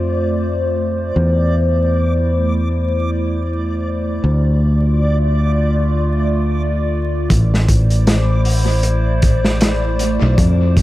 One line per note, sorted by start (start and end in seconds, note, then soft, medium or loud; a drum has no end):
0.00 1.12 F2 medium
0.00 4.19 A3 medium
0.00 1.12 F4 medium
0.00 4.19 C5 medium
0.00 7.29 D5 medium
1.15 4.20 E2 medium
1.15 4.20 E4 medium
4.23 7.28 D2 medium
4.23 7.27 A3 medium
4.23 7.28 F4 medium
4.23 7.28 D5 medium
7.30 10.17 A1 loud
7.30 10.82 A3 medium
7.30 10.35 E4 medium
7.30 10.82 C5 medium
7.30 10.82 D5 medium
7.30 kick loud
7.30 closed hi-hat medium
7.54 snare soft
7.68 kick medium
7.68 closed hi-hat medium
7.90 closed hi-hat soft
8.07 snare loud
8.07 closed hi-hat medium
8.45 open hi-hat medium
8.83 closed hi-hat medium
9.22 kick medium
9.22 closed hi-hat medium
9.45 snare soft
9.61 snare loud
9.61 closed hi-hat loud
9.99 closed hi-hat medium
10.22 10.36 B1 medium
10.38 10.82 F2 loud
10.38 10.82 F4 medium
10.38 kick loud
10.38 closed hi-hat medium
10.77 kick medium
10.77 closed hi-hat medium